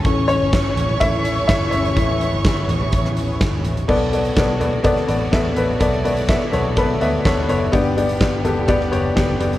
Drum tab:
CC |----------------|----------------|x---------------|----------------|
HH |x-x-x-x-x-x-x-xx|x-x-x-x-x-x-x-xx|--xxx-x-x-x-x-x-|x-xxx-x-x-x-x-x-|
SD |----o-------o---|----o----o--o---|----o----o--o---|----o-------o---|
FT |------oo-----oo-|------oo-----oo-|------oo-----o--|------oo-----o--|
BD |o---o---o---o---|o---o---o---o---|o---o---o---o---|o---o---o---o---|

CC |----------------|
HH |x-xxx-x-x-x-x-xx|
SD |----o----o--o---|
FT |------oo-----o--|
BD |o---o---o---o---|